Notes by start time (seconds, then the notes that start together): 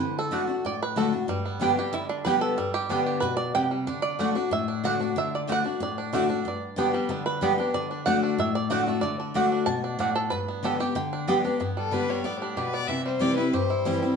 Already playing: B4
0.00 D3
0.19 A4
0.31 D3 A3 D4 F#4 D5 F#5
0.47 D4 F#4
0.65 A2 D5
0.82 B4
0.96 D3 A3 D4 F#4 A4 D5 F#5
1.13 D4 F#4
1.28 G2 G3
1.45 B3
1.60 D3 G3 B3 D4 G4 D5 G5
1.77 B3 G4
1.93 D3 E4
2.09 D4
2.25 D3 G3 B3 G4 B4 D5 G5
2.41 A4
2.58 G2 G3
2.74 G4
2.89 D3 G3 B3 D4 G4 D5 G5
3.06 G4
3.20 B2 B4
3.37 D5
3.55 C3 B3 G4 D5 G5
3.71 G3
3.87 D3 D4
4.02 D5
4.19 D3 A3 D4 F#4 D5 F#5
4.35 D4 F#4
4.51 A2 E5
4.68 D4
4.84 D3 A3 D4 F#4 D5 F#5
4.99 D4 F#4
5.16 D3 E5
5.35 D5
5.47 D3 A3 D4 F#4 D5 F#5
5.52 F#5
5.64 D4 F#4
5.80 A2 D5
5.98 D4
6.13 D3 A3 D4 F#4 D5 F#5
6.29 D4 F#4
6.45 G2 D5
6.76 D3 G3 B3 D4 G4 D5 G5
6.93 G3 B3 G4
7.09 D3 B3
7.26 B4
7.41 D3 G3 B3 G4 D5 G5
7.58 B3 D4 G4
7.74 D3 D5
7.91 D4
8.06 D3 A3 D4 F#4 D5 F#5
8.23 D4
8.38 A2 E5
8.55 D5
8.70 D3 A3 D4 F#4 D5 F#5
8.86 A3 D4 F#4
9.01 D3 D5
9.20 D4
9.34 D3 A3 D4 F#4 D5 F#5
9.52 D4
9.66 B2 A5
9.84 D4
9.99 A2 A3 D4 F#4 D5 F#5
10.16 A4
10.30 G2 B4
10.48 B3
10.63 D3 G3 B3 G4 A4 D5 G5
10.80 B3 G4
10.95 D3 G5
11.13 D4
11.28 D3 G3 B3 G4 D5 G5
11.45 B3 D4 G4
11.60 G2 B3
11.77 G3 A4
11.91 D3 G3 B3 D4 G4 B4
12.08 G3 B3 G4 C#5
12.24 A2 B3 D5
12.40 D4 G4
12.57 B2 G4 B4
12.73 B3 D5
12.88 C3 E3 E5
13.05 G3 C5
13.20 E3 G3 C4 E4 G4 D5
13.36 C4 E4 B4
13.53 G2 G4 C5
13.70 E4
13.85 E3 G3 C4 E4
14.02 C4 E4